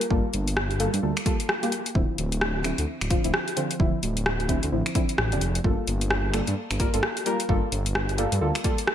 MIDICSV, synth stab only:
0, 0, Header, 1, 2, 480
1, 0, Start_track
1, 0, Tempo, 461538
1, 110, Time_signature, 4, 2, 24, 8
1, 9307, End_track
2, 0, Start_track
2, 0, Title_t, "Synth stab"
2, 0, Program_c, 0, 62
2, 109, Note_on_c, 0, 58, 85
2, 109, Note_on_c, 0, 69, 98
2, 110, Note_on_c, 0, 55, 94
2, 110, Note_on_c, 0, 65, 84
2, 274, Note_off_c, 0, 55, 0
2, 274, Note_off_c, 0, 58, 0
2, 274, Note_off_c, 0, 65, 0
2, 274, Note_off_c, 0, 69, 0
2, 829, Note_on_c, 0, 65, 83
2, 830, Note_on_c, 0, 55, 92
2, 830, Note_on_c, 0, 58, 83
2, 830, Note_on_c, 0, 69, 99
2, 939, Note_off_c, 0, 55, 0
2, 939, Note_off_c, 0, 58, 0
2, 939, Note_off_c, 0, 65, 0
2, 939, Note_off_c, 0, 69, 0
2, 1069, Note_on_c, 0, 58, 67
2, 1070, Note_on_c, 0, 55, 73
2, 1070, Note_on_c, 0, 65, 70
2, 1070, Note_on_c, 0, 69, 81
2, 1234, Note_off_c, 0, 58, 0
2, 1234, Note_off_c, 0, 65, 0
2, 1234, Note_off_c, 0, 69, 0
2, 1235, Note_off_c, 0, 55, 0
2, 1309, Note_on_c, 0, 55, 93
2, 1309, Note_on_c, 0, 58, 86
2, 1309, Note_on_c, 0, 65, 85
2, 1309, Note_on_c, 0, 69, 101
2, 1419, Note_off_c, 0, 55, 0
2, 1419, Note_off_c, 0, 58, 0
2, 1419, Note_off_c, 0, 65, 0
2, 1419, Note_off_c, 0, 69, 0
2, 1694, Note_on_c, 0, 55, 87
2, 1694, Note_on_c, 0, 58, 75
2, 1694, Note_on_c, 0, 65, 78
2, 1694, Note_on_c, 0, 67, 98
2, 1766, Note_off_c, 0, 55, 0
2, 1766, Note_off_c, 0, 58, 0
2, 1766, Note_off_c, 0, 67, 0
2, 1767, Note_off_c, 0, 65, 0
2, 2030, Note_on_c, 0, 50, 84
2, 2030, Note_on_c, 0, 53, 79
2, 2030, Note_on_c, 0, 60, 77
2, 2030, Note_on_c, 0, 64, 93
2, 2727, Note_off_c, 0, 50, 0
2, 2727, Note_off_c, 0, 53, 0
2, 2728, Note_off_c, 0, 60, 0
2, 2728, Note_off_c, 0, 64, 0
2, 2750, Note_on_c, 0, 50, 72
2, 2750, Note_on_c, 0, 53, 68
2, 2750, Note_on_c, 0, 60, 67
2, 2750, Note_on_c, 0, 64, 82
2, 2859, Note_off_c, 0, 50, 0
2, 2859, Note_off_c, 0, 53, 0
2, 2859, Note_off_c, 0, 60, 0
2, 2859, Note_off_c, 0, 64, 0
2, 3230, Note_on_c, 0, 50, 89
2, 3230, Note_on_c, 0, 53, 80
2, 3231, Note_on_c, 0, 60, 83
2, 3231, Note_on_c, 0, 65, 97
2, 3340, Note_off_c, 0, 50, 0
2, 3340, Note_off_c, 0, 53, 0
2, 3340, Note_off_c, 0, 60, 0
2, 3340, Note_off_c, 0, 65, 0
2, 3375, Note_on_c, 0, 50, 73
2, 3375, Note_on_c, 0, 53, 68
2, 3375, Note_on_c, 0, 64, 83
2, 3376, Note_on_c, 0, 60, 70
2, 3447, Note_off_c, 0, 50, 0
2, 3447, Note_off_c, 0, 53, 0
2, 3447, Note_off_c, 0, 60, 0
2, 3447, Note_off_c, 0, 64, 0
2, 3710, Note_on_c, 0, 50, 93
2, 3710, Note_on_c, 0, 53, 80
2, 3710, Note_on_c, 0, 60, 82
2, 3710, Note_on_c, 0, 65, 100
2, 3819, Note_off_c, 0, 50, 0
2, 3819, Note_off_c, 0, 53, 0
2, 3819, Note_off_c, 0, 60, 0
2, 3819, Note_off_c, 0, 65, 0
2, 3950, Note_on_c, 0, 50, 91
2, 3950, Note_on_c, 0, 53, 85
2, 3950, Note_on_c, 0, 60, 81
2, 3950, Note_on_c, 0, 64, 106
2, 4114, Note_off_c, 0, 53, 0
2, 4114, Note_off_c, 0, 60, 0
2, 4114, Note_off_c, 0, 64, 0
2, 4115, Note_off_c, 0, 50, 0
2, 4670, Note_on_c, 0, 50, 86
2, 4670, Note_on_c, 0, 53, 82
2, 4670, Note_on_c, 0, 60, 81
2, 4670, Note_on_c, 0, 64, 99
2, 4779, Note_off_c, 0, 50, 0
2, 4779, Note_off_c, 0, 53, 0
2, 4779, Note_off_c, 0, 60, 0
2, 4779, Note_off_c, 0, 64, 0
2, 4910, Note_on_c, 0, 50, 72
2, 4910, Note_on_c, 0, 53, 69
2, 4910, Note_on_c, 0, 60, 66
2, 4910, Note_on_c, 0, 64, 80
2, 5074, Note_off_c, 0, 50, 0
2, 5074, Note_off_c, 0, 53, 0
2, 5075, Note_off_c, 0, 60, 0
2, 5075, Note_off_c, 0, 64, 0
2, 5149, Note_on_c, 0, 50, 93
2, 5149, Note_on_c, 0, 53, 84
2, 5149, Note_on_c, 0, 64, 99
2, 5150, Note_on_c, 0, 60, 85
2, 5259, Note_off_c, 0, 50, 0
2, 5259, Note_off_c, 0, 53, 0
2, 5259, Note_off_c, 0, 60, 0
2, 5259, Note_off_c, 0, 64, 0
2, 5535, Note_on_c, 0, 50, 84
2, 5535, Note_on_c, 0, 53, 79
2, 5535, Note_on_c, 0, 60, 77
2, 5535, Note_on_c, 0, 62, 96
2, 5607, Note_off_c, 0, 50, 0
2, 5607, Note_off_c, 0, 53, 0
2, 5607, Note_off_c, 0, 60, 0
2, 5607, Note_off_c, 0, 62, 0
2, 5871, Note_on_c, 0, 55, 85
2, 5871, Note_on_c, 0, 58, 79
2, 5871, Note_on_c, 0, 65, 79
2, 5871, Note_on_c, 0, 69, 92
2, 6568, Note_off_c, 0, 55, 0
2, 6568, Note_off_c, 0, 58, 0
2, 6568, Note_off_c, 0, 65, 0
2, 6568, Note_off_c, 0, 69, 0
2, 6590, Note_on_c, 0, 55, 74
2, 6590, Note_on_c, 0, 58, 70
2, 6590, Note_on_c, 0, 65, 68
2, 6590, Note_on_c, 0, 69, 80
2, 6699, Note_off_c, 0, 55, 0
2, 6699, Note_off_c, 0, 58, 0
2, 6699, Note_off_c, 0, 65, 0
2, 6699, Note_off_c, 0, 69, 0
2, 7070, Note_on_c, 0, 55, 87
2, 7070, Note_on_c, 0, 65, 82
2, 7070, Note_on_c, 0, 70, 98
2, 7071, Note_on_c, 0, 58, 81
2, 7180, Note_off_c, 0, 55, 0
2, 7180, Note_off_c, 0, 58, 0
2, 7180, Note_off_c, 0, 65, 0
2, 7180, Note_off_c, 0, 70, 0
2, 7214, Note_on_c, 0, 55, 73
2, 7214, Note_on_c, 0, 58, 68
2, 7214, Note_on_c, 0, 65, 68
2, 7214, Note_on_c, 0, 69, 81
2, 7287, Note_off_c, 0, 55, 0
2, 7287, Note_off_c, 0, 58, 0
2, 7287, Note_off_c, 0, 65, 0
2, 7287, Note_off_c, 0, 69, 0
2, 7551, Note_on_c, 0, 55, 91
2, 7551, Note_on_c, 0, 58, 85
2, 7551, Note_on_c, 0, 65, 81
2, 7551, Note_on_c, 0, 70, 102
2, 7660, Note_off_c, 0, 55, 0
2, 7660, Note_off_c, 0, 58, 0
2, 7660, Note_off_c, 0, 65, 0
2, 7660, Note_off_c, 0, 70, 0
2, 7790, Note_on_c, 0, 55, 92
2, 7790, Note_on_c, 0, 58, 87
2, 7790, Note_on_c, 0, 65, 85
2, 7790, Note_on_c, 0, 69, 102
2, 7954, Note_off_c, 0, 55, 0
2, 7954, Note_off_c, 0, 65, 0
2, 7954, Note_off_c, 0, 69, 0
2, 7955, Note_off_c, 0, 58, 0
2, 8510, Note_on_c, 0, 55, 93
2, 8510, Note_on_c, 0, 58, 82
2, 8510, Note_on_c, 0, 65, 83
2, 8510, Note_on_c, 0, 69, 97
2, 8619, Note_off_c, 0, 55, 0
2, 8619, Note_off_c, 0, 58, 0
2, 8619, Note_off_c, 0, 65, 0
2, 8619, Note_off_c, 0, 69, 0
2, 8749, Note_on_c, 0, 58, 68
2, 8750, Note_on_c, 0, 55, 74
2, 8750, Note_on_c, 0, 65, 66
2, 8750, Note_on_c, 0, 69, 82
2, 8914, Note_off_c, 0, 55, 0
2, 8914, Note_off_c, 0, 58, 0
2, 8914, Note_off_c, 0, 65, 0
2, 8915, Note_off_c, 0, 69, 0
2, 8990, Note_on_c, 0, 55, 93
2, 8990, Note_on_c, 0, 58, 83
2, 8990, Note_on_c, 0, 65, 82
2, 8990, Note_on_c, 0, 69, 105
2, 9099, Note_off_c, 0, 55, 0
2, 9099, Note_off_c, 0, 58, 0
2, 9099, Note_off_c, 0, 65, 0
2, 9099, Note_off_c, 0, 69, 0
2, 9307, End_track
0, 0, End_of_file